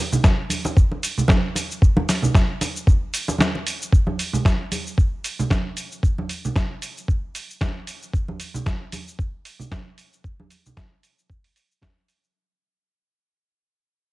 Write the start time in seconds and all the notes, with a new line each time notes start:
0.12 low conga, cabasa
0.24 kick, snare, muted conga, cabasa
0.50 open hi-hat, high conga, cabasa
0.65 muted conga, cabasa
0.77 kick, cabasa
0.91 muted conga
1.03 open hi-hat, cabasa
1.18 low conga, cabasa
1.28 kick, snare, muted conga, high conga, cabasa
1.55 open hi-hat, muted conga, cabasa
1.71 cabasa
1.82 kick, cabasa
1.97 muted conga, high conga
2.09 snare, open hi-hat, cabasa
2.22 muted conga, low conga, cabasa
2.35 kick, snare, cabasa
2.61 open hi-hat, muted conga, cabasa
2.76 cabasa
2.87 kick, muted conga, cabasa
3.14 open hi-hat, cabasa
3.28 muted conga, cabasa
3.38 snare, high conga, cabasa
3.55 muted conga
3.67 open hi-hat, cabasa
3.82 cabasa
3.92 kick, cabasa
4.07 high conga
4.19 open hi-hat, cabasa
4.33 low conga, cabasa
4.45 kick, snare, cabasa
4.71 open hi-hat, high conga, cabasa
4.87 cabasa
4.98 kick, cabasa
5.24 open hi-hat, cabasa
5.39 low conga, cabasa
5.50 kick, snare, high conga, cabasa
5.77 open hi-hat, cabasa
5.92 cabasa
6.03 kick, cabasa
6.18 high conga
6.29 open hi-hat, cabasa
6.44 low conga, cabasa
6.56 kick, snare, cabasa
6.82 open hi-hat, cabasa
6.97 cabasa
7.08 kick, cabasa
7.35 open hi-hat, cabasa
7.50 cabasa
7.61 kick, snare, high conga, cabasa
7.87 open hi-hat, cabasa
8.02 cabasa
8.13 kick, cabasa
8.28 high conga
8.40 open hi-hat, cabasa
8.54 low conga, cabasa
8.66 kick, snare, cabasa
8.92 open hi-hat, high conga, cabasa
9.08 cabasa
9.19 kick, cabasa
9.45 open hi-hat, cabasa
9.59 low conga, cabasa
9.72 kick, snare, high conga, cabasa
9.98 open hi-hat, cabasa
10.13 cabasa
10.24 kick, cabasa
10.40 high conga
10.50 open hi-hat, cabasa
10.66 low conga, cabasa
10.77 kick, snare, cabasa
11.03 open hi-hat, cabasa
11.18 cabasa
11.30 kick, cabasa
11.44 open hi-hat
11.56 open hi-hat, cabasa
11.71 cabasa
11.81 kick, snare, high conga, cabasa
12.08 open hi-hat, cabasa
12.24 cabasa